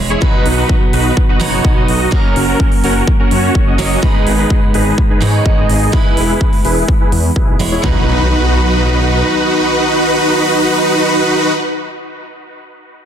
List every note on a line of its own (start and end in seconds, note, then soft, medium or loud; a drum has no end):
0.00 0.16 E1 medium
0.00 0.19 G#3 medium
0.00 0.19 B3 medium
0.00 0.19 E4 medium
0.00 0.19 C#5 medium
0.10 0.20 E4 medium
0.10 0.20 G#4 medium
0.10 0.20 C#5 loud
0.10 closed hi-hat soft
0.21 1.37 B2 medium
0.21 1.38 F#3 medium
0.21 1.38 B3 medium
0.21 0.55 D#4 medium
0.21 1.38 D#4 medium
0.21 0.55 F#4 medium
0.21 0.55 B4 loud
0.21 1.39 B4 medium
0.21 kick loud
0.46 0.64 B1 loud
0.46 open hi-hat loud
0.58 0.76 D#4 medium
0.58 0.76 F#4 medium
0.58 0.76 B4 loud
0.69 kick loud
0.93 1.11 B1 medium
0.93 1.12 D#4 medium
0.93 1.12 F#4 medium
0.93 1.12 B4 loud
0.93 open hi-hat medium
1.17 kick loud
1.29 1.38 D#4 medium
1.29 1.38 F#4 medium
1.29 1.38 B4 loud
1.40 1.59 F#1 medium
1.40 2.09 B2 medium
1.40 2.09 F#3 medium
1.40 2.09 B3 medium
1.40 1.74 D#4 medium
1.40 2.10 D#4 medium
1.40 1.74 F#4 medium
1.40 2.10 B4 loud
1.40 1.74 C#5 medium
1.40 open hi-hat loud
1.65 1.83 B1 medium
1.65 kick loud
1.76 2.09 D#4 medium
1.76 2.09 F#4 medium
1.76 2.09 D#5 loud
1.88 2.07 B1 medium
1.88 open hi-hat loud
2.11 3.75 F#3 medium
2.11 3.76 A#3 medium
2.11 2.45 C#4 medium
2.11 3.76 C#4 medium
2.11 2.45 F#4 medium
2.11 3.77 A#4 medium
2.11 kick loud
2.36 2.54 F#1 medium
2.36 open hi-hat medium
2.48 2.67 C#4 medium
2.48 2.67 F#4 medium
2.48 2.67 A#4 loud
2.60 kick loud
2.72 open hi-hat medium
2.84 3.02 F#1 medium
2.84 3.03 C#4 loud
2.84 3.03 F#4 medium
2.84 3.03 A#4 loud
2.84 open hi-hat medium
3.07 kick loud
3.19 3.29 C#4 medium
3.19 3.29 F#4 medium
3.19 3.29 A#4 loud
3.31 3.49 F#2 medium
3.31 3.64 C#4 medium
3.31 3.64 F#4 medium
3.31 3.64 C#5 medium
3.31 open hi-hat medium
3.55 3.73 F#1 medium
3.55 kick loud
3.67 4.00 C#4 medium
3.67 4.00 F#4 medium
3.67 4.00 D#5 loud
3.78 3.97 F#1 medium
3.78 4.00 F#3 medium
3.78 4.00 A#3 medium
3.78 4.00 C#4 medium
3.78 4.00 C#5 medium
3.78 open hi-hat medium
4.01 5.18 G#2 medium
4.01 5.19 G#3 medium
4.01 5.19 B3 medium
4.01 4.36 D#4 medium
4.01 5.19 D#4 medium
4.01 4.36 B4 loud
4.01 5.19 B4 medium
4.01 kick loud
4.27 4.45 G#1 medium
4.27 open hi-hat medium
4.38 4.57 D#4 medium
4.38 4.57 G#4 medium
4.38 4.57 B4 loud
4.50 kick loud
4.74 4.92 G#1 medium
4.74 4.93 D#4 loud
4.74 4.93 G#4 medium
4.74 4.93 B4 loud
4.74 open hi-hat medium
4.98 kick loud
5.10 5.19 D#4 medium
5.10 5.19 G#4 medium
5.10 5.19 B4 loud
5.21 5.90 G#2 medium
5.21 5.40 G#2 medium
5.21 5.90 G#3 medium
5.21 5.90 B3 medium
5.21 5.55 D#4 medium
5.21 5.91 D#4 medium
5.21 5.55 G#4 medium
5.21 5.91 B4 medium
5.21 5.55 C#5 medium
5.21 open hi-hat medium
5.46 5.64 G#1 medium
5.46 kick loud
5.57 5.90 D#4 medium
5.57 5.90 G#4 medium
5.57 5.90 D#5 loud
5.69 5.88 G#1 medium
5.69 open hi-hat medium
5.92 7.56 G#3 medium
5.92 7.57 B3 medium
5.92 6.26 E4 medium
5.92 7.57 E4 medium
5.92 7.58 B4 medium
5.92 kick loud
6.17 6.35 E1 medium
6.17 open hi-hat medium
6.29 6.48 E4 medium
6.29 6.48 G#4 medium
6.29 6.48 B4 medium
6.41 kick loud
6.53 open hi-hat medium
6.65 6.83 E1 medium
6.65 6.84 E4 loud
6.65 6.83 G#4 medium
6.65 6.84 B4 loud
6.65 open hi-hat medium
6.88 kick loud
7.00 7.10 E4 medium
7.00 7.10 G#4 medium
7.00 7.10 B4 loud
7.12 7.30 E2 medium
7.12 open hi-hat medium
7.36 7.54 B1 medium
7.36 7.55 E4 medium
7.36 7.55 G#4 medium
7.36 7.55 B4 loud
7.36 kick loud
7.59 7.78 E1 medium
7.59 7.81 G#3 medium
7.59 7.81 B3 medium
7.59 7.81 E4 medium
7.59 7.81 C#5 medium
7.59 open hi-hat medium
7.72 7.82 E4 medium
7.72 7.82 G#4 medium
7.72 7.82 C#5 loud
7.82 9.23 B1 medium
7.82 11.51 F#3 medium
7.82 11.52 B3 medium
7.82 11.52 D#4 medium
7.82 11.53 D#4 medium
7.82 11.52 F#4 medium
7.82 11.52 B4 medium
7.82 11.54 B4 medium
7.82 kick loud
7.82 floor tom loud
7.82 impact medium